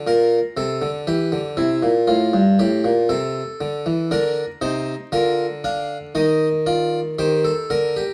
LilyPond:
<<
  \new Staff \with { instrumentName = "Harpsichord" } { \time 4/4 \key bes \major \tempo 4 = 59 << { r1 | bes'8 c''8 bes'8 f''8 ees''8 d''8 c''8 r8 | } \\ { bes'8 a'8 g'8 e'8 f'8 g'8 a'4 | d'8 ees'8 f'8 d'8 ees'8 f'8 g'16 a'16 bes'16 g'16 | } >> }
  \new Staff \with { instrumentName = "Harpsichord" } { \clef bass \time 4/4 \key bes \major bes,8 c16 d16 e16 d16 c16 bes,16 a,16 g,16 a,16 bes,16 c8 d16 e16 | d8 c8 d4 ees4 ees8 d8 | }
>>